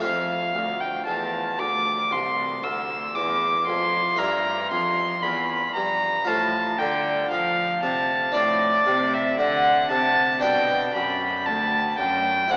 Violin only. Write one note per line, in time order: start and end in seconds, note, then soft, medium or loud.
0.02 0.82 F5 medium
0.81 1.05 G5 medium
1.06 1.60 A5 medium
1.59 2.13 D6 loud
2.12 2.65 C6 medium
2.63 3.17 E6 medium
3.15 3.66 D6 medium
3.67 4.20 C6 medium
4.19 4.70 A#5 loud
4.71 5.24 C6 loud
5.23 5.75 B5 medium
5.75 6.29 A#5 loud
6.27 6.80 A5 loud
6.79 7.30 G5 medium
7.31 7.82 F5 loud
7.83 8.36 A5 loud
8.34 9.15 D5 medium
9.13 9.39 E5 medium
9.39 9.90 F#5 loud
9.91 10.42 A5 loud
10.43 10.94 G5 loud
10.94 11.47 B5 medium
11.46 11.98 A5 loud
11.98 12.53 G5 loud
12.51 12.57 F#5 loud